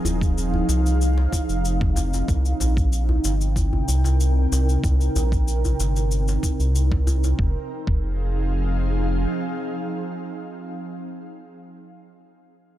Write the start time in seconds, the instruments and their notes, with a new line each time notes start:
Already playing: ambient pad F3 C4 D#4 G#4 F5, singing bowl F5
0.05 analog synth bass D#1, djembe slap, djembe tone, djembe bass, cabasa
0.21 kick, cabasa
0.38 cabasa
0.54 djembe bass
0.69 analog synth bass C2, djembe slap, cabasa
0.86 cabasa
1.01 cabasa
1.18 djembe slap
1.32 kick, djembe tone, cabasa
1.49 analog synth bass F1, cabasa
1.65 cabasa
1.81 kick, djembe slap
1.96 djembe tone, djembe bass, cabasa
2.14 djembe slap, djembe tone, cabasa
2.28 analog synth bass C2, ambient pad C3, kick, cabasa
2.45 cabasa
2.60 analog synth bass A#1, djembe slap, djembe bass, cabasa
2.77 ambient pad G5, kick, cabasa
2.93 cabasa
3.09 djembe bass
3.15 ambient pad A#4
3.24 analog synth bass G1, djembe slap, cabasa
3.41 cabasa
3.56 kick, djembe tone, cabasa
3.73 djembe bass
3.88 analog synth bass C2, djembe tone, cabasa
4.04 djembe slap, djembe tone, cabasa
4.20 cabasa
4.52 analog synth bass C2, djembe slap, cabasa
4.69 cabasa
4.84 analog synth bass C2, kick, cabasa
5.01 cabasa
5.16 analog synth bass A#1, djembe slap, djembe tone, djembe bass, cabasa
5.32 kick, cabasa
5.48 cabasa
5.65 djembe bass, cabasa
5.79 analog synth bass G1, djembe slap, cabasa
5.96 djembe tone, cabasa
6.11 cabasa
6.28 djembe slap, cabasa
6.43 kick, djembe tone, cabasa
6.60 analog synth bass C2, cabasa
6.75 cabasa
6.92 kick, djembe slap
7.07 djembe tone, djembe bass, cabasa
7.24 djembe slap, djembe tone, cabasa
7.39 analog synth bass F1, ambient pad F3, kick
7.49 ambient pad C4
7.58 ambient pad D#4
7.67 ambient pad G#4
7.77 ambient pad F5
7.87 analog synth bass F1, kick